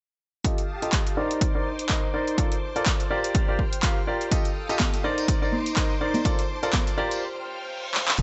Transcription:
0.44 0.59 F4 medium
0.44 0.59 G4 medium
0.44 1.16 G4 medium
0.44 0.59 A4 medium
0.44 0.59 D#5 medium
0.44 1.16 F5 medium
0.44 1.16 A5 medium
0.44 1.16 D#6 medium
0.44 kick loud
0.44 closed hi-hat medium
0.58 closed hi-hat soft
0.82 1.15 F4 medium
0.82 1.15 G4 medium
0.82 1.15 A4 medium
0.82 1.15 D#5 medium
0.82 closed hi-hat soft
0.93 kick loud
0.93 clap loud
0.93 closed hi-hat medium
1.07 closed hi-hat soft
1.17 2.37 D#4 medium
1.17 1.52 D#4 medium
1.17 1.52 A#4 medium
1.17 1.52 C5 medium
1.17 4.28 C5 medium
1.17 1.52 D5 loud
1.17 2.37 C6 medium
1.17 2.37 D6 medium
1.31 closed hi-hat soft
1.41 kick loud
1.41 closed hi-hat medium
1.55 1.66 D#4 medium
1.55 1.66 A#4 medium
1.55 1.66 C5 medium
1.55 1.66 D5 medium
1.79 closed hi-hat medium
1.89 2.04 D#4 medium
1.89 2.04 A#4 medium
1.89 2.04 C5 medium
1.89 2.04 D#5 medium
1.89 kick loud
1.89 clap loud
1.89 closed hi-hat medium
2.14 2.35 D#4 medium
2.14 2.35 A#4 medium
2.14 2.35 C5 medium
2.14 2.35 D5 medium
2.27 closed hi-hat soft
2.38 2.52 F4 medium
2.38 2.52 A4 medium
2.38 2.52 A#4 medium
2.38 2.52 D5 medium
2.38 3.10 A5 medium
2.38 3.10 D6 medium
2.38 kick loud
2.38 closed hi-hat medium
2.52 closed hi-hat soft
2.76 3.08 F4 medium
2.76 3.08 A4 medium
2.76 3.08 A#4 medium
2.76 3.08 D5 medium
2.76 closed hi-hat soft
2.86 kick loud
2.86 clap loud
2.86 closed hi-hat medium
3.00 closed hi-hat soft
3.10 3.45 F4 medium
3.10 3.45 G4 medium
3.10 3.45 A#4 medium
3.10 3.45 D5 loud
3.10 4.30 G5 medium
3.10 4.30 F6 medium
3.24 closed hi-hat soft
3.35 kick loud
3.35 closed hi-hat medium
3.48 3.60 F4 medium
3.48 3.60 G4 medium
3.48 3.60 A#4 medium
3.48 3.60 D5 medium
3.59 kick medium
3.73 closed hi-hat medium
3.83 3.97 F4 medium
3.83 3.97 G4 medium
3.83 3.97 A#4 medium
3.83 3.97 F5 medium
3.83 kick loud
3.83 clap loud
3.83 closed hi-hat medium
4.07 4.29 F4 medium
4.07 4.29 G4 medium
4.07 4.29 A#4 medium
4.07 4.29 D5 medium
4.21 closed hi-hat soft
4.31 4.46 F4 medium
4.31 4.46 G4 medium
4.31 4.46 A4 medium
4.31 5.03 A4 medium
4.31 4.46 D#5 loud
4.31 5.03 F5 medium
4.31 5.03 G5 medium
4.31 5.03 D#6 medium
4.31 kick loud
4.31 closed hi-hat medium
4.31 tambourine medium
4.45 closed hi-hat soft
4.45 tambourine soft
4.69 5.02 F4 medium
4.69 5.02 G4 medium
4.69 5.02 A4 medium
4.69 5.02 D#5 medium
4.69 closed hi-hat soft
4.69 tambourine medium
4.80 kick loud
4.80 clap loud
4.80 closed hi-hat medium
4.80 tambourine medium
4.80 high conga medium
4.94 closed hi-hat soft
4.94 tambourine soft
5.04 5.39 D#4 medium
5.04 6.24 D#4 medium
5.04 5.39 A#4 medium
5.04 5.39 C5 medium
5.04 8.16 C5 medium
5.04 5.39 D5 loud
5.04 6.24 C6 medium
5.04 6.96 D6 medium
5.18 closed hi-hat soft
5.18 tambourine medium
5.28 kick loud
5.28 closed hi-hat medium
5.42 5.53 D#4 medium
5.42 5.53 A#4 medium
5.42 5.53 C5 medium
5.42 5.53 D5 medium
5.42 tambourine soft
5.52 high conga medium
5.66 closed hi-hat medium
5.66 tambourine medium
5.76 5.91 D#4 medium
5.76 5.91 A#4 medium
5.76 5.91 C5 medium
5.76 5.91 D#5 medium
5.76 kick loud
5.76 clap loud
5.76 closed hi-hat medium
5.90 tambourine soft
6.01 6.23 D#4 medium
6.01 6.23 A#4 medium
6.01 6.23 C5 medium
6.01 6.23 D5 medium
6.14 closed hi-hat soft
6.14 tambourine medium
6.14 high conga medium
6.25 6.39 F4 medium
6.25 6.39 A4 medium
6.25 6.39 A#4 medium
6.25 6.39 D5 loud
6.25 6.97 A5 medium
6.25 kick loud
6.25 closed hi-hat medium
6.25 tambourine medium
6.39 closed hi-hat soft
6.39 tambourine soft
6.63 6.95 F4 medium
6.63 6.95 A4 medium
6.63 6.95 A#4 medium
6.63 6.95 D5 medium
6.63 closed hi-hat soft
6.63 tambourine medium
6.73 kick loud
6.73 clap loud
6.73 closed hi-hat medium
6.73 tambourine medium
6.73 high conga medium
6.87 closed hi-hat soft
6.87 tambourine soft
6.98 7.22 F4 medium
6.98 7.22 G4 medium
6.98 7.22 A#4 medium
6.98 7.22 D5 loud
6.98 8.17 G5 medium
6.98 8.17 F6 medium
7.11 closed hi-hat soft
7.11 tambourine medium
7.22 reverse cymbal medium
7.94 clap medium
8.08 clap medium
8.19 8.22 F1 medium
8.19 8.22 F4 medium
8.19 8.22 G4 medium
8.19 8.22 A4 medium
8.19 8.22 D#5 loud
8.19 8.22 G5 medium
8.19 kick loud
8.19 closed hi-hat medium
8.19 ride medium
8.19 tambourine medium

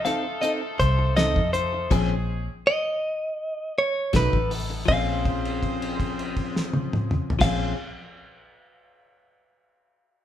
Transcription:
0.00 1.89 A3 medium
0.00 1.89 D#4 medium
0.00 1.87 F4 medium
0.00 1.89 A4 medium
0.05 0.25 C4 medium
0.05 0.24 D#4 medium
0.05 0.23 A4 medium
0.05 0.41 F5 medium
0.05 snare soft
0.05 closed hi-hat medium
0.24 muted clean electric guitar stroke soft
0.42 0.62 C4 medium
0.42 0.61 D#4 medium
0.42 0.60 A4 medium
0.42 0.52 D#5 medium
0.42 closed hi-hat medium
0.62 muted clean electric guitar stroke soft
0.80 1.36 C2 medium
0.80 1.16 C5 medium
0.80 kick medium
0.80 closed hi-hat medium
0.99 muted clean electric guitar stroke soft
1.17 1.40 C4 medium
1.17 1.40 D#4 medium
1.17 1.41 A4 medium
1.17 1.53 D#5 medium
1.17 snare loud
1.17 closed hi-hat medium
1.36 1.87 F2 medium
1.36 kick medium
1.53 1.92 C5 medium
1.53 muted clean electric guitar stroke soft
1.53 closed hi-hat medium
1.73 muted clean electric guitar stroke soft
1.91 2.47 A#1 loud
1.91 2.14 F3 medium
1.91 2.51 G#3 medium
1.91 2.14 C4 medium
1.91 2.51 C4 medium
1.91 2.51 C#4 medium
1.91 2.15 C#4 medium
1.91 2.51 G#4 medium
1.91 2.15 G#4 loud
1.91 kick loud
1.91 closed hi-hat medium
1.91 crash medium
2.67 3.74 D#5 loud
3.78 4.14 C#5 medium
4.13 4.32 B1 loud
4.13 4.36 F#3 medium
4.13 4.37 A3 medium
4.13 4.88 A3 medium
4.13 4.88 B3 medium
4.13 4.88 D#4 medium
4.13 4.37 D#4 medium
4.13 4.88 A4 medium
4.13 4.51 B4 medium
4.13 kick medium
4.13 snare loud
4.13 closed hi-hat medium
4.33 4.84 A1 medium
4.33 kick medium
4.51 muted clean electric guitar stroke soft
4.51 open hi-hat medium
4.70 muted clean electric guitar stroke soft
4.86 7.28 A#1 medium
4.86 7.38 F3 medium
4.86 7.41 C4 medium
4.86 7.28 C4 medium
4.86 7.28 G#4 medium
4.86 7.28 C5 medium
4.86 7.28 F5 medium
4.86 kick loud
4.86 crash medium
4.91 7.43 C#4 medium
4.91 7.45 G#4 medium
5.25 kick medium
5.25 crash soft
5.45 crash soft
5.63 kick medium
5.63 crash soft
5.82 crash medium
6.00 kick medium
6.00 crash medium
6.19 crash soft
6.36 kick medium
6.36 crash soft
6.56 snare medium
6.73 high tom medium
6.93 mid tom medium
7.11 mid tom medium
7.30 floor tom medium
7.39 7.72 A#1 medium
7.39 7.73 F3 medium
7.39 7.71 A#3 medium
7.39 7.72 C4 medium
7.39 7.74 C4 medium
7.39 7.72 G#4 medium
7.39 7.72 C5 medium
7.39 7.72 F5 medium
7.39 kick loud
7.39 snare loud
7.39 crash medium
7.44 7.76 C#4 medium
7.44 7.77 G#4 medium

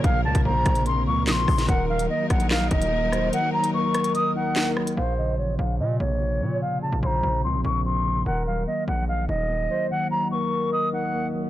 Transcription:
0.00 0.04 A#2 medium
0.00 1.65 A#2 medium
0.00 1.07 A#2 medium
0.00 0.25 C3 medium
0.00 0.25 C#3 medium
0.00 0.45 F3 medium
0.00 0.45 A#3 medium
0.00 1.65 A#3 medium
0.00 1.65 A#4 medium
0.04 0.26 A#1 loud
0.04 0.21 F5 loud
0.04 kick loud
0.04 closed hi-hat medium
0.25 0.34 C#2 loud
0.25 1.27 C#3 medium
0.25 0.41 A5 medium
0.35 0.45 A#1 loud
0.35 kick loud
0.35 closed hi-hat medium
0.45 0.65 A#1 loud
0.45 1.26 F3 medium
0.45 0.84 C5 medium
0.45 0.84 A#5 medium
0.66 1.08 A#1 loud
0.66 kick loud
0.66 cross-stick loud
0.66 closed hi-hat medium
0.75 closed hi-hat medium
0.86 1.69 C4 medium
0.86 1.03 C6 medium
0.86 closed hi-hat medium
1.07 1.29 C#2 loud
1.07 1.69 A#3 medium
1.07 1.24 C#6 medium
1.27 1.47 A#1 loud
1.27 1.69 F3 medium
1.27 1.33 D#6 medium
1.27 snare loud
1.27 clap loud
1.27 closed hi-hat medium
1.32 1.66 C6 loud
1.48 1.68 A#1 loud
1.48 1.69 C#3 medium
1.48 kick medium
1.48 cross-stick medium
1.48 open hi-hat medium
1.58 snare medium
1.58 closed hi-hat medium
1.68 2.08 D#1 loud
1.68 2.71 D#3 loud
1.68 4.94 F#3 medium
1.68 4.94 D#4 medium
1.68 2.07 A#4 loud
1.68 4.94 A#4 medium
1.68 1.85 F#5 loud
1.68 kick loud
1.68 closed hi-hat medium
1.89 2.92 F#3 medium
1.89 2.06 F5 medium
1.99 closed hi-hat medium
2.09 2.90 A#3 medium
2.09 2.26 D#5 medium
2.30 2.70 A#1 loud
2.30 2.47 F#5 medium
2.30 kick loud
2.30 cross-stick medium
2.30 closed hi-hat medium
2.40 closed hi-hat medium
2.51 3.53 D#5 medium
2.51 2.67 F5 medium
2.51 snare loud
2.51 clap medium
2.71 3.30 D#1 loud
2.71 3.74 D#4 medium
2.71 3.29 D#5 medium
2.71 kick medium
2.71 closed hi-hat medium
2.82 closed hi-hat medium
2.92 3.73 A#3 medium
3.12 3.52 F#3 medium
3.12 3.32 C5 medium
3.12 cross-stick medium
3.12 closed hi-hat medium
3.33 4.36 D#3 medium
3.33 3.50 F#5 loud
3.33 closed hi-hat medium
3.53 4.56 F#3 medium
3.53 3.70 A#5 medium
3.64 closed hi-hat medium
3.74 4.55 A#3 medium
3.74 4.93 A#4 medium
3.74 4.13 C#6 medium
3.94 cross-stick loud
3.94 closed hi-hat medium
4.04 closed hi-hat medium
4.15 4.97 D#5 medium
4.15 4.32 D#6 medium
4.15 closed hi-hat medium
4.36 4.97 D#4 medium
4.36 4.69 F#5 medium
4.56 4.97 A#3 medium
4.56 snare loud
4.56 clap loud
4.56 closed hi-hat medium
4.77 4.97 F#3 medium
4.77 cross-stick medium
4.87 closed hi-hat medium
4.97 5.40 A#1 loud
4.97 6.00 A#2 medium
4.97 5.36 C5 loud
4.97 5.14 F5 loud
5.18 6.21 C#3 medium
5.18 5.35 D#5 medium
5.38 5.58 A1 loud
5.38 6.19 F3 medium
5.38 5.55 C#5 medium
5.59 5.81 A#1 loud
5.59 5.75 F5 medium
5.79 5.99 A#2 loud
5.79 6.82 C3 medium
5.79 5.96 D#5 medium
6.00 6.43 A#1 loud
6.00 7.03 A#3 medium
6.00 6.58 C#5 medium
6.21 7.02 F3 medium
6.41 6.90 A#2 medium
6.41 6.81 C#3 medium
6.41 6.61 C#5 medium
6.61 7.64 A#2 medium
6.61 6.78 F5 loud
6.82 7.85 C#3 medium
6.82 6.99 A5 medium
6.92 7.02 A#1 medium
7.03 7.22 A#1 loud
7.03 7.84 F3 medium
7.03 7.42 C5 medium
7.03 7.41 A#5 medium
7.03 7.07 C6 medium
7.23 7.45 A#1 loud
7.44 7.56 C#2 medium
7.44 8.26 C4 medium
7.44 7.61 C6 medium
7.54 7.64 A#1 loud
7.65 8.24 A#1 loud
7.65 8.26 A#3 medium
7.65 7.81 C#6 medium
7.85 8.26 F3 medium
7.85 8.24 C6 medium
8.06 8.26 C#3 medium
8.26 8.66 D#1 loud
8.26 9.29 D#3 medium
8.26 8.65 A#4 loud
8.26 8.43 F#5 loud
8.47 9.49 F#3 medium
8.47 8.63 F5 medium
8.67 9.48 A#3 medium
8.67 8.84 D#5 medium
8.88 9.27 A#1 loud
8.88 9.04 F#5 medium
9.08 10.11 D#5 medium
9.08 9.25 F5 medium
9.29 9.68 D#1 loud
9.29 10.32 D#4 medium
9.29 9.87 D#5 medium
9.49 10.31 A#3 medium
9.70 10.10 F#3 medium
9.70 9.90 C5 medium
9.91 10.93 D#3 medium
9.91 10.07 F#5 loud
10.11 11.14 F#3 medium
10.11 10.28 A#5 medium
10.31 11.13 A#3 medium
10.31 11.50 A#4 medium
10.31 10.70 C#6 medium
10.73 11.50 D#5 medium
10.73 10.89 D#6 medium
10.93 11.50 D#4 medium
10.93 11.27 F#5 medium
11.14 11.50 A#3 medium
11.34 11.50 F#3 medium

